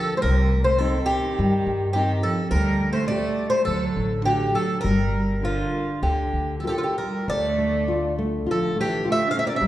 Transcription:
Already playing: F3 F4 G4 A4 A#4
0.16 G3 A3 C5
0.22 C2 C3 A#4
0.64 A3 C5
0.76 D#3 C4 A4
0.80 D#4 G4
1.05 D#3 G4
1.39 G2 G3
1.67 G2
1.93 D#3 C4 D#4 G4
2.21 F3 A4
2.50 D2 G3 A#4
2.54 D3
2.92 A3 C5
3.04 A3 D5
3.09 A3 D4 G4
3.49 A3 C5
3.62 F#3 A4
3.67 D2 D3
3.96 A1
4.22 D3 A3 D4 G4
4.26 F#4
4.51 F#3 A4
4.80 G3 A#4
4.85 G1
5.42 D3 F4 G4 A#4
6.02 D2 D3 G4
6.33 D2
6.58 F3 A4
6.63 F4 G4 A#4
6.67 D#3 G4 A4
6.78 D3 F4
6.84 G4
6.88 D#3
6.98 G3 A#4
7.28 D2 D3 A3 D5
7.58 A3
7.88 F4
8.18 A3
8.47 A1 F3 F4
8.51 A4
8.76 E3 A3
8.81 G4
9.05 A3 F4
9.12 E5
9.26 D4
9.31 A3 C#4 F5
9.39 E5
9.43 A#3 D5
9.53 C#4 E5
9.61 G1 G3

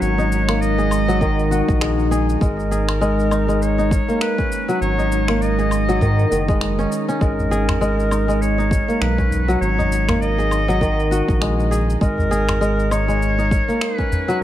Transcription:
Already playing: F#3 G#3 A#3 C#4 D#4 A#5
0.01 G#1 C#5, shaker
0.18 D#4, shaker
0.32 shaker
0.48 A#3, finger snap, low woodblock, shaker
0.61 D#5, shaker
0.78 G#4, shaker
0.91 low woodblock, shaker
1.08 F#3, shaker
1.21 D#3, kick, shaker
1.39 shaker
1.51 F#4, shaker
1.68 A#1, kick, shaker
1.81 G#3, finger snap, shaker
1.99 shaker
2.11 G#4, shaker
2.29 shaker
2.41 G#1 G#3 A#4, kick, shaker
2.60 shaker
2.71 G#4, shaker
2.89 finger snap, low woodblock, shaker
3.01 G#3, shaker
3.19 shaker
3.31 D#4, low woodblock, shaker
3.48 G#3, shaker
3.62 C#5, shaker
3.78 D#4, shaker
3.91 kick, shaker
4.08 A#3, shaker
4.21 B4, finger snap, shaker
4.38 C#4, kick, shaker
4.52 shaker
4.68 F#3, shaker
4.81 G#1 C#5, shaker
4.98 D#4, shaker
5.12 shaker
5.28 A#3, finger snap, low woodblock, shaker
5.41 D#5, shaker
5.58 G#4, shaker
5.71 low woodblock, shaker
5.89 F#3, shaker
6.01 G#2 D#3, kick, shaker
6.19 shaker
6.31 F#1 D#3, shaker
6.48 G#3, kick, shaker
6.61 finger snap, shaker
6.79 C#4, shaker
6.92 shaker
7.08 C#4, shaker
7.21 G#1 G#3 A#4, kick, shaker
7.39 udu, shaker
7.51 G#4, shaker
7.68 finger snap, udu, low woodblock, shaker
7.81 G#3, shaker
8.00 shaker
8.11 D#4, low woodblock, shaker
8.28 G#3, shaker
8.41 C#5, shaker
8.58 D#4, shaker
8.71 kick, shaker
8.88 A#3, shaker
9.01 B1 B4, finger snap, shaker
9.18 C#4, kick, shaker
9.31 udu, shaker
9.48 F#3, shaker
9.61 G#1 C#5, shaker
9.78 D#4, udu, shaker
9.92 shaker
10.08 A#3, finger snap, udu, low woodblock, shaker
10.21 D#5, shaker
10.38 G#4, shaker
10.51 low woodblock, shaker
10.68 F#3, shaker
10.81 D#3, kick, shaker
11.00 shaker
11.11 F#4, shaker
11.28 A#1, kick, shaker
11.41 G#3, finger snap, shaker
11.60 shaker
11.71 G#4, shaker
11.90 shaker
12.01 G#1 G#3 A#4, kick, shaker
12.18 udu, shaker
12.31 G#4, shaker
12.48 finger snap, udu, low woodblock, shaker
12.61 G#3, shaker
12.80 shaker
12.91 D#4 C#5, low woodblock, shaker
13.08 G#3, shaker
13.22 shaker
13.38 D#4, shaker
13.51 kick, shaker
13.68 A#3, shaker
13.81 B4, finger snap, shaker
13.98 C#4, kick, shaker
14.12 udu, shaker
14.28 F#3, shaker

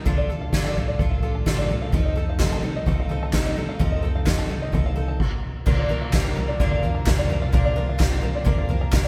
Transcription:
0.05 D2 D3 F3 A3 D4 F4 A4, kick, floor tom
0.18 D5
0.29 D4 F4 A4, floor tom
0.41 F5
0.52 D3 F3 D4 F4 A4, kick, snare
0.65 A5
0.75 A1 D4 F4 A4, floor tom
0.88 D5
0.99 A1 F3 D4 F4 A4, kick, floor tom
1.11 F5
1.23 D4 F4 A4
1.35 A5
1.46 D3 F3 D4 F4 A4, kick, snare
1.58 D5
1.69 D4 F4 A4, floor tom
1.82 F5
1.92 F2 C3 F3 C4 D#4 A4, kick, floor tom
2.05 D#5
2.16 C4 D#4 A4
2.29 F5
2.39 F3 C4 D#4 A4, kick, snare, clap
2.52 A5
2.63 C2 C4 D#4 A4
2.76 D#5
2.86 C2 F3 C4 D#4 A4, kick, floor tom
3.00 F5
3.09 C4 D#4 A4, floor tom
3.23 A5
3.33 F3 C4 D#4 A4, kick, snare, clap
3.46 D#5
3.56 C4 D#4 A4
3.69 F5
3.79 F2 F3 C4 D#4 A4, kick, floor tom
3.92 D#5
4.02 C4 D#4 A4, floor tom
4.15 F5
4.26 F3 C4 D#4 A4, kick, snare, clap
4.38 A5
4.49 C2 C4 D#4 A4, floor tom
4.62 D#5
4.72 C2 F3 C4 D#4 A4, kick, floor tom
4.86 F5
4.96 C4 D#4 A4
5.08 A5
5.20 kick, crash
5.66 A#1 A#2 D3 F3 A#3 D4 F4 A#4, kick, floor tom, crash
5.79 D5
5.89 F3 A#3 D4 A#4, floor tom
6.02 F5
6.12 F3 A#3 D4 A#4, kick, snare, clap, floor tom
6.25 A#5
6.35 F3 A#3 D4 A#4, floor tom
6.48 D5
6.60 F2 A#2 D3 F3 A#3 D4 A#4, kick, floor tom
6.71 F5
6.83 F3 A#3 D4 A#4, floor tom
6.95 A#5
7.06 F2 F3 A#3 D4 A#4, kick, snare, clap, floor tom
7.18 D5
7.30 F3 A#3 D4 A#4, floor tom
7.42 F5
7.52 A#1 A#2 D3 F3 A#3 C4 D4 A#4, kick, floor tom
7.65 D5
7.76 F3 A#3 D4 A#4, floor tom
7.89 F5
7.98 F3 A#3 D4 A#4, kick, snare, clap, floor tom
8.12 A#5
8.21 F3 A#3 D4 A#4, floor tom
8.35 D5
8.45 F2 A#2 D3 F3 A#3 D4 A#4, kick, floor tom
8.58 F5
8.69 F3 A#3 D4 A#4, floor tom
8.81 A#5
8.91 F2 F3 A#3 D4 A#4, kick, snare, clap, floor tom
9.04 D5

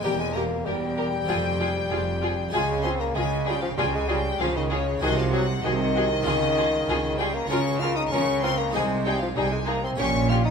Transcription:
0.00 E2 A#3 C4 G4 A#4 G5
0.04 E1 E2 G3 G4
0.20 G#3 G#5
0.33 A#3 G4 A#4 A#5
0.66 E1 E2 G3 G4 A#4 G5
0.97 G4 A#4
1.24 G#3 C4 F4
1.28 F1 F2 F4 G#4
1.59 F4 G#4
1.90 F1 F2 F4 G#4
2.22 F4 G#4
2.49 G#3 F4 G#4
2.53 C#2 C#3 G#3 F4 G#4 G#5
2.83 C4 F4 G#4 C6
3.00 A#3 A#5
3.15 C#2 C#3 G#3 F4 G#4 G#5
3.45 G3 F4 G#4 G5
3.62 F3 F5
3.78 C#2 C#3 G3 F4 G#4 G5
3.95 G#3 G#5
4.08 G3 F4 G#4 G5
4.39 C#2 C#3 F3 F4 G#4 F5
4.57 D#3 D#5
4.70 C#3 F4 G#4 C#5
4.98 G#3 F#4 G#4
5.02 C2 C3 D#3 F#4 D#5
5.18 F3 F5
5.33 F#3 F#4 G#4 F#5
5.63 C2 C3 D#3 F#4 G#4 D#5
5.94 F#4 G#4
6.22 G#3 F4 G#4
6.26 C#2 C#3 G#4
6.57 F4 G#4
6.88 C#2 C#3 F4 G#4
7.18 G3 F4 G#4 G5
7.33 A#3 A#5
7.47 C#2 C#3 C#4 F4 A#4 C#6
7.79 F4 A#4 F6
7.96 D#4 D#6
8.10 C#2 C#3 C#4 F4 A#4 C#6
8.41 C4 F4 A#4 C6
8.58 A#3 A#5
8.70 G#3 D#4 C5 G#5
8.74 C2 C3 G#3 G#4
9.05 G3 D#4 G#4 G5
9.20 F3 F5
9.36 C2 C3 G3 D#4 G#4 G5
9.51 G#3 G#5
9.66 A#3 D#4 G#4 A#5
9.83 C4 C6
9.96 A#1 A#2 C#4 G4 C#5 C#6
10.29 C#4 F4 G4 F6
10.43 D#4 D#6

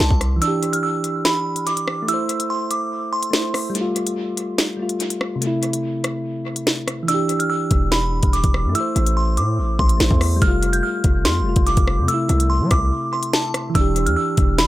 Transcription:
0.00 C2 A5, snare
0.11 C2, kick
0.21 cross-stick, closed hi-hat
0.36 E3
0.42 D4 E6, closed hi-hat
0.48 G4
0.63 closed hi-hat
0.73 F6, closed hi-hat
0.83 E6
1.04 closed hi-hat
1.25 B5, snare
1.56 closed hi-hat
1.67 D6, closed hi-hat
1.77 closed hi-hat
1.88 cross-stick
2.02 A3
2.08 E4 E6, closed hi-hat
2.14 C5
2.29 closed hi-hat
2.40 closed hi-hat
2.50 C6
2.71 D6, closed hi-hat
3.13 C6
3.23 closed hi-hat
3.31 A3 E4, snare
3.36 C5
3.54 cross-stick, open hi-hat
3.70 G3
3.75 A3, closed hi-hat
3.81 F4
3.96 closed hi-hat
4.07 closed hi-hat
4.37 closed hi-hat
4.58 snare
4.77 G3 A3
4.82 F4
4.89 closed hi-hat
5.00 closed hi-hat
5.10 closed hi-hat
5.21 cross-stick
5.36 C3
5.41 A3, closed hi-hat
5.47 E4
5.63 closed hi-hat
5.73 closed hi-hat
6.04 cross-stick, closed hi-hat
6.56 closed hi-hat
6.67 snare
6.88 cross-stick, closed hi-hat
7.03 E3
7.08 D4 E6, closed hi-hat
7.14 G4
7.29 closed hi-hat
7.39 F6, closed hi-hat
7.50 E6
7.71 E1, kick, closed hi-hat
7.92 B5, snare
8.23 E1, kick, closed hi-hat
8.33 D6, closed hi-hat
8.44 E1, kick, closed hi-hat
8.54 cross-stick
8.65 G2
8.69 A3
8.75 E4 E6, closed hi-hat
8.80 C5
8.96 A1, closed hi-hat
9.06 closed hi-hat
9.17 C6
9.37 A2 D6, closed hi-hat
9.58 A1
9.79 A1 C6, kick
9.89 closed hi-hat
9.97 A1 A3 E4, snare
10.03 C5
10.11 E2, kick
10.21 cross-stick, open hi-hat
10.36 G3
10.42 F1 A3 F6, kick, closed hi-hat
10.48 F4
10.63 closed hi-hat
10.73 G6, closed hi-hat
10.83 F6
11.04 F1, kick, closed hi-hat
11.25 F2 C6, snare
11.41 F1 G3
11.46 A3 F4
11.56 F1, kick, closed hi-hat
11.67 D6, closed hi-hat
11.77 F1, kick, closed hi-hat
11.88 cross-stick
11.98 F2
12.02 C3
12.08 A3 E6, closed hi-hat
12.14 E4
12.29 C2, closed hi-hat
12.40 closed hi-hat
12.50 C6
12.61 G3
12.71 C2 D6, kick, cross-stick, closed hi-hat
13.13 C6
13.23 closed hi-hat
13.33 A5, snare
13.54 cross-stick, closed hi-hat
13.70 E3
13.75 E1 D4 E6, kick, closed hi-hat
13.81 G4
13.96 closed hi-hat
14.06 E2 F6, closed hi-hat
14.16 E6
14.37 E1, kick, closed hi-hat
14.58 B5, snare

